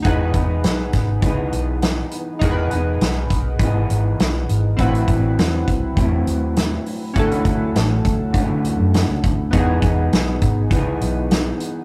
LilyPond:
<<
  \new Staff \with { instrumentName = "Synth keys" } { \time 4/4 \key e \major \tempo 4 = 101 <dis' fis' gis' b'>1 | <dis' fis' gis' ais' b'>1 | <c' e' fis' b'>1 | <cis' e' fis' a'>1 |
<b dis' fis' gis'>1 | }
  \new Staff \with { instrumentName = "Clean electric guitar" } { \time 4/4 \key e \major <e b dis' gis'>8 <b dis' gis'>4. <e b dis' gis'>2 | <e b dis' gis'>8 <b dis' gis'>4. <e b dis' gis'>2 | <a, fis c' e'>8 <fis c' e'>4. <a, fis c' e'>2 | <d fis a cis'>8 <fis a cis'>4. <d fis a cis'>2 |
<e b dis' gis'>8 <b dis' gis'>4. <e b dis' gis'>2 | }
  \new Staff \with { instrumentName = "Fingered electric bass" } { \clef bass \time 4/4 \key e \major e,,8 e,,8 b,,8 gis,,8 cis,8 b,,4 r8 | e,,8 e,,8 b,,8 b,,8 gis,,8 gis,,8 b,,8 gis,,8 | a,,8 a,,8 e,8 c,8 e,8 dis,4 r8 | d,8 d,8 a,,8 d,8 r16 d16 d,16 fis,8 cis,16 d,8 |
e,8 e,8 b,,8 gis,,8 cis,8 b,,4 r8 | }
  \new DrumStaff \with { instrumentName = "Drums" } \drummode { \time 4/4 <hh bd>8 <hh bd>8 <hh sn>8 <hh bd sn>8 <hh bd>8 hh8 <hh sn>8 hh8 | <hh bd>8 hh8 <hh sn>8 <hh bd>8 <hh bd>8 hh8 <hh sn>8 hh8 | <hh bd>16 hh16 <hh bd>8 <hh sn>8 <hh bd>8 <hh bd>8 hh8 <hh sn>8 hho8 | <hh bd>16 hh16 <hh bd>8 <hh sn>8 <hh bd>8 <hh bd>8 hh8 <hh sn>8 <hh bd>8 |
<hh bd>8 <hh bd>8 <hh sn>8 <hh bd>8 <hh bd>8 hh8 <hh sn>8 hh8 | }
>>